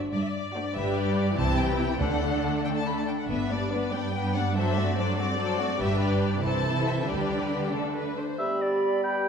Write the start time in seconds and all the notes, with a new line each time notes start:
0.13 G2 D5
0.20 E5
0.26 D5
0.55 A3 D4 F#4 C5
0.75 G1 G2 G3 D4 G4 B4 E5
0.96 D5
1.37 C2 C3 E3 E4 G4 C5 A5
1.59 G5
1.69 B4
2.00 D2 D3 A3 D4 A4 F#5
2.65 G5
2.76 A5
2.86 B5
2.97 A5
3.07 G5
3.18 F#5
3.28 G1 G2 B3 D4 B4 E5
3.51 G3 B3 D4 D5
3.72 B3 D4 B4
3.93 G3 B3 D4 D5 G5
4.14 B3 D4 B4
4.35 G3 B3 D4 D5 F#5
4.55 F#3 D4 A4 C5 E5
4.78 A3 C4 F#4 D5
4.97 F#3 D4 A4 C5 D5
5.18 A3 C4 F#4 D5
5.40 F#3 D4 A4 C5
5.60 A3 C4 F#4 D5
5.80 G1 G2 G3 D4 G4 B4 E5
6.01 D5
6.43 C2 C3 E3 E4 A4 C5 A5
6.87 E5
7.08 D2 D3 G3 D4 G4 B4 D5
7.74 A3 D4 A4
7.96 B4
8.17 C5
8.39 G3 B3 G4 E5 B5
8.61 D5
9.03 G5